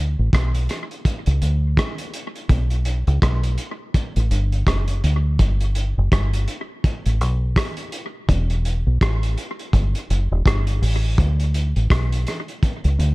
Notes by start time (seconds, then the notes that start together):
Already playing: D2
0.19 A1
0.33 B1, kick, cross-stick, closed hi-hat
0.55 closed hi-hat
0.69 cross-stick, closed hi-hat
0.91 closed hi-hat
1.05 kick, closed hi-hat
1.26 C#2, closed hi-hat
1.42 D2, closed hi-hat
1.77 kick, cross-stick, closed hi-hat
1.98 closed hi-hat
2.14 closed hi-hat
2.36 closed hi-hat
2.49 B1, kick, closed hi-hat
2.70 closed hi-hat
2.85 closed hi-hat
3.07 C#2, closed hi-hat
3.22 B1, kick, cross-stick, closed hi-hat
3.43 closed hi-hat
3.58 closed hi-hat
3.94 kick, closed hi-hat
4.16 A1, closed hi-hat
4.31 G1, closed hi-hat
4.52 closed hi-hat
4.67 F#1, kick, cross-stick, closed hi-hat
4.88 closed hi-hat
5.04 D2, closed hi-hat
5.39 G1, kick, closed hi-hat
5.61 closed hi-hat
5.75 closed hi-hat
5.98 F#1
6.12 G1, kick, cross-stick, closed hi-hat
6.33 closed hi-hat
6.48 closed hi-hat
6.84 kick, closed hi-hat
7.06 A1, closed hi-hat
7.21 B1, closed hi-hat
7.56 kick, cross-stick, closed hi-hat
7.77 closed hi-hat
7.92 closed hi-hat
8.29 E1, kick, closed hi-hat
8.50 closed hi-hat
8.65 closed hi-hat
8.87 B1
9.01 A1, kick, cross-stick, closed hi-hat
9.23 closed hi-hat
9.38 closed hi-hat
9.59 closed hi-hat
9.73 G1, kick, closed hi-hat
9.95 closed hi-hat
10.10 F#1, closed hi-hat
10.32 E1
10.46 G1, kick, cross-stick, closed hi-hat
10.67 closed hi-hat
10.82 A1, open hi-hat
11.18 D2, kick, closed hi-hat
11.40 closed hi-hat
11.54 closed hi-hat
11.76 A1, closed hi-hat
11.90 B1, kick, cross-stick, closed hi-hat
12.12 closed hi-hat
12.27 cross-stick, closed hi-hat
12.48 closed hi-hat
12.63 kick, closed hi-hat
12.84 C#2, closed hi-hat
12.99 D2, closed hi-hat